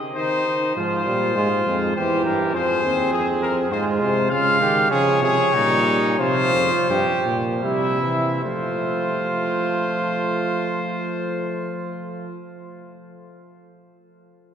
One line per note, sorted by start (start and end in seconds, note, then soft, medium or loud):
0.16 0.45 D#3 medium
0.16 0.72 D#4 medium
0.16 0.72 C5 loud
0.46 0.76 D#3 medium
0.76 1.04 G#2 medium
0.76 1.04 F3 medium
0.76 1.32 F4 medium
0.76 1.91 C5 medium
1.06 1.36 A#2 medium
1.06 1.35 G3 medium
1.35 1.66 G#2 medium
1.35 1.49 G#3 loud
1.35 1.94 F4 medium
1.66 1.95 F2 medium
1.66 1.95 G#3 loud
1.95 2.25 E2 medium
1.95 2.56 E3 loud
1.95 2.53 G4 medium
1.95 2.24 C5 medium
2.25 2.56 G2 medium
2.25 2.54 A#4 medium
2.55 2.86 F2 medium
2.55 2.83 F3 loud
2.55 3.74 G#4 medium
2.55 3.12 C5 loud
2.84 3.13 D#2 medium
2.84 3.70 C4 loud
3.13 3.73 F2 medium
3.13 3.26 G#4 medium
3.42 3.55 A#4 medium
3.71 4.03 G#2 medium
3.71 4.30 G#3 loud
3.71 4.31 F4 medium
3.71 3.85 C5 medium
4.01 4.30 C3 medium
4.01 4.30 C5 medium
4.30 4.60 C#3 medium
4.30 4.93 G#3 medium
4.30 4.60 F4 medium
4.30 4.90 F5 loud
4.61 4.91 D#3 medium
4.61 4.90 G4 loud
4.91 5.21 C#3 medium
4.91 5.53 F3 loud
4.91 5.21 G#4 loud
4.91 6.17 C#5 loud
5.22 5.36 C3 medium
5.22 5.56 G#4 loud
5.54 6.18 A#2 medium
5.54 6.21 G3 medium
5.54 6.19 D#4 loud
6.19 6.53 C3 medium
6.19 7.28 F3 loud
6.19 6.88 F4 loud
6.19 7.25 C5 loud
6.54 6.70 F2 medium
6.89 7.05 G2 loud
6.89 7.36 G4 loud
7.26 7.65 A#2 medium
7.62 8.44 C3 medium
7.62 8.00 G3 medium
7.62 8.41 E4 medium
7.62 8.40 E5 medium
8.02 8.43 E3 medium
8.43 12.37 F3 medium
8.43 12.37 A3 medium
8.43 12.37 F4 medium
8.43 12.36 C5 medium